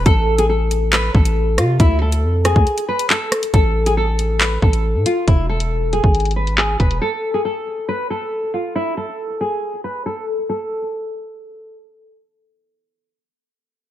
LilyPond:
<<
  \new Staff \with { instrumentName = "Nylon-string guitar" } { \time 4/4 \key e \phrygian \tempo 4 = 138 a'8. gis'16 a'4 b'8 a'4 f'8 | e'8 a'4 gis'4 b'8 a'8 r8 | a'8. gis'16 a'4 b'8 a'4 f'8 | e'8 a'4 gis'4 b'8 gis'8 b'8 |
a'8. gis'16 a'4 b'8 a'4 f'8 | e'8 a'4 gis'4 b'8 a'8 r8 | a'2. r4 | r1 | }
  \new Staff \with { instrumentName = "808-style bass" } { \clef bass \time 4/4 \key e \phrygian a,,2~ a,,8 a,,4 c8 | d,4 f,8. d,16 r2 | a,,2~ a,,8 a,,8. a,16 r8 | e,,4.~ e,,16 gis,,4.~ gis,,16 e,,8 |
r1 | r1 | r1 | r1 | }
  \new DrumStaff \with { instrumentName = "Drums" } \drummode { \time 4/4 <hh bd>8. hh16 r8 hh8 <hc hh>8 bd16 hh16 r8 <hh ss>8 | <hh bd>8. hh16 r8 <hh ss>16 bd16 hh16 hh8 hh16 hc8 <hh ss>16 hh16 | <hh bd>8. hh16 r8 hh8 <hc hh>8 bd16 hh16 r8 hh8 | <hh bd>8. hh16 r8 hh16 bd16 hh32 hh32 hh32 hh16. hh16 hc8 <hh bd>16 hh16 |
r4 r4 r4 r4 | r4 r4 r4 r4 | r4 r4 r4 r4 | r4 r4 r4 r4 | }
>>